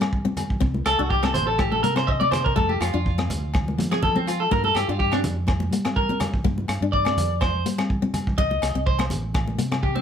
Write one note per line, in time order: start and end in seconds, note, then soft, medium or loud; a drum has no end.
0.00 0.57 G3 medium
0.00 0.17 C4 medium
0.00 cross-stick medium
0.00 low agogo medium
0.13 kick medium
0.25 0.41 C4 medium
0.25 high conga medium
0.37 closed hi-hat medium
0.37 low conga medium
0.37 low agogo medium
0.50 kick medium
0.60 0.85 C2 loud
0.60 0.77 C4 medium
0.60 kick medium
0.74 high conga medium
0.86 0.98 C2 medium
0.86 0.99 A4 medium
0.86 cross-stick medium
0.86 closed hi-hat soft
0.86 low agogo medium
0.99 1.33 C2 medium
0.99 1.15 D4 medium
0.99 1.10 F#4 medium
1.10 1.23 G4 medium
1.10 kick medium
1.23 1.39 C4 medium
1.23 1.34 A4 medium
1.23 cross-stick medium
1.23 high conga medium
1.23 low agogo medium
1.34 1.81 A1 medium
1.34 1.46 C5 medium
1.34 closed hi-hat soft
1.34 low conga medium
1.47 1.58 A4 medium
1.58 1.71 G4 medium
1.58 kick medium
1.58 cross-stick medium
1.58 high conga medium
1.58 low agogo medium
1.72 1.83 A4 medium
1.72 high conga medium
1.83 2.53 C3 medium
1.83 1.92 A#3 medium
1.83 1.96 A#4 medium
1.83 closed hi-hat soft
1.96 2.12 C4 medium
1.96 2.07 C5 medium
1.96 cross-stick medium
1.96 low agogo medium
2.07 2.19 D#5 medium
2.07 kick medium
2.20 2.37 C4 medium
2.20 2.31 D5 loud
2.20 high conga medium
2.31 2.44 C5 medium
2.31 cross-stick medium
2.31 closed hi-hat soft
2.31 low conga medium
2.31 low agogo medium
2.44 2.55 A#4 medium
2.44 kick medium
2.56 2.80 F2 loud
2.56 2.72 A3 medium
2.56 2.69 A4 medium
2.56 kick medium
2.69 2.80 G4 medium
2.69 high conga medium
2.80 2.93 F2 medium
2.80 2.93 F4 medium
2.80 cross-stick medium
2.80 closed hi-hat medium
2.80 low agogo medium
2.94 3.28 F2 loud
2.94 3.10 D4 medium
2.94 3.63 F4 medium
3.06 kick medium
3.18 3.34 C4 medium
3.18 cross-stick medium
3.18 high conga medium
3.18 low agogo medium
3.29 3.75 D2 medium
3.29 closed hi-hat medium
3.29 low conga medium
3.54 kick medium
3.54 cross-stick medium
3.54 high conga medium
3.54 low agogo medium
3.68 high conga medium
3.77 4.47 F3 medium
3.77 3.87 A#3 medium
3.77 closed hi-hat medium
3.77 low conga medium
3.91 4.07 C4 medium
3.91 4.02 G#4 medium
3.91 cross-stick medium
3.91 low agogo medium
4.03 4.15 A4 loud
4.03 kick medium
4.03 low conga medium
4.16 4.32 C4 medium
4.16 4.27 C4 medium
4.16 high conga medium
4.27 4.40 F4 medium
4.27 closed hi-hat medium
4.27 low agogo medium
4.40 4.51 A4 medium
4.51 4.74 G2 loud
4.51 4.67 A#3 medium
4.51 4.64 A#4 medium
4.51 kick medium
4.64 4.75 A4 medium
4.64 high conga medium
4.75 4.87 G2 medium
4.75 4.88 G4 medium
4.75 cross-stick medium
4.75 closed hi-hat medium
4.75 low agogo medium
4.88 5.22 G2 loud
4.88 5.05 D4 medium
4.88 4.99 F4 medium
4.99 5.12 G4 loud
4.99 kick medium
5.12 5.29 C4 medium
5.12 5.19 D4 medium
5.12 cross-stick medium
5.12 high conga medium
5.12 low agogo medium
5.23 5.69 F2 medium
5.23 closed hi-hat medium
5.23 low conga medium
5.47 muted clean electric guitar stroke medium
5.47 kick medium
5.47 cross-stick medium
5.47 high conga medium
5.47 low agogo medium
5.60 high conga medium
5.71 6.41 G3 loud
5.71 5.81 A#3 medium
5.71 closed hi-hat medium
5.85 6.01 C4 medium
5.85 cross-stick medium
5.85 low agogo medium
5.96 6.20 A#4 medium
5.96 kick medium
6.09 6.26 C4 medium
6.09 high conga medium
6.20 cross-stick medium
6.20 closed hi-hat soft
6.20 low conga medium
6.20 low agogo medium
6.34 kick medium
6.44 6.68 G2 loud
6.44 6.61 A#3 medium
6.44 kick medium
6.58 high conga medium
6.68 6.80 G2 medium
6.68 cross-stick medium
6.68 closed hi-hat soft
6.68 low agogo medium
6.81 7.15 G2 loud
6.81 6.98 D4 medium
6.92 7.38 D5 medium
6.92 kick medium
7.05 7.22 C4 medium
7.05 cross-stick medium
7.05 high conga medium
7.05 low agogo medium
7.17 7.63 F2 medium
7.17 closed hi-hat soft
7.17 low conga medium
7.41 7.65 C5 medium
7.41 kick medium
7.41 cross-stick medium
7.41 high conga medium
7.41 low agogo medium
7.66 8.35 G3 medium
7.66 7.74 A#3 medium
7.66 closed hi-hat medium
7.78 7.94 C4 medium
7.78 cross-stick medium
7.78 low agogo medium
7.90 kick medium
8.02 8.18 C4 medium
8.02 high conga medium
8.14 closed hi-hat medium
8.14 low conga medium
8.14 low agogo medium
8.27 kick medium
8.38 8.61 C2 loud
8.38 8.83 D#5 medium
8.38 muted nylon-string guitar stroke medium
8.38 kick medium
8.51 high conga medium
8.62 8.74 C2 medium
8.62 cross-stick medium
8.62 closed hi-hat medium
8.62 low agogo medium
8.75 9.09 C2 loud
8.75 8.91 C4 medium
8.86 9.01 C5 medium
8.86 kick medium
8.99 muted nylon-string guitar stroke medium
8.99 cross-stick medium
8.99 high conga medium
8.99 low agogo medium
9.10 9.56 A1 medium
9.10 closed hi-hat medium
9.10 low conga medium
9.34 kick medium
9.34 cross-stick medium
9.34 high conga medium
9.34 low agogo medium
9.48 high conga medium
9.58 10.02 C3 loud
9.58 9.67 A#3 medium
9.58 closed hi-hat medium
9.72 9.88 C4 medium
9.72 cross-stick medium
9.72 low agogo medium
9.83 9.96 G4 medium
9.83 kick medium
9.95 10.02 C4 medium
9.95 high conga medium